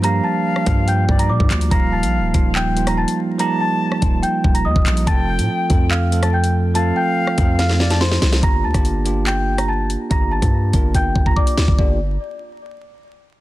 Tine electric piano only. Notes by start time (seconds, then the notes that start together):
Already playing: F3 G3 A#3 D4 F4
0.03 F3 G3 A#3 D4 G4
0.66 F3 G3 A#3 D4 F4
1.70 F3 G3 A#3 D#4 F4
2.33 F3 G3 A#3 D#4 F4
2.75 F3 G3 A#3 D#4 F4
3.38 F3 G3 A#3 D#4 G4
4.01 F3 G3 A#3 D#4 F4
5.06 F3 A3 C4 F4 A4
5.69 F3 A3 C4 F4 A4
6.11 F3 A3 C4 F4 A4
6.74 F3 A3 C4 F4 A4
7.37 F3 A3 C4 F4 A4
8.42 A#3 D4 F4 G4
8.73 A#3 D4 F4 G4
9.05 A#3 D4 F4 G4
10.10 A#3 D4 F4 G4
10.73 A#3 D4 F4 A#4
11.79 A#3 D4 F4 G4